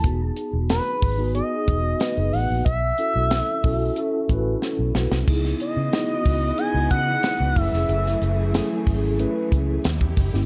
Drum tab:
CC |----------------|----------------|x---------------|----------------|
HH |x-x-x-o-x-x-x-o-|x-x-x-o-x-x-----|--x-x-o-x-x-x-o-|x-x-x-o-x-x-x-o-|
SD |----o-------o---|----o-------o-oo|-o--o-------o--o|-o--o-------o--o|
BD |o-----o---o-----|o-----o---o-----|o-----o---o---o-|------o---o--oo-|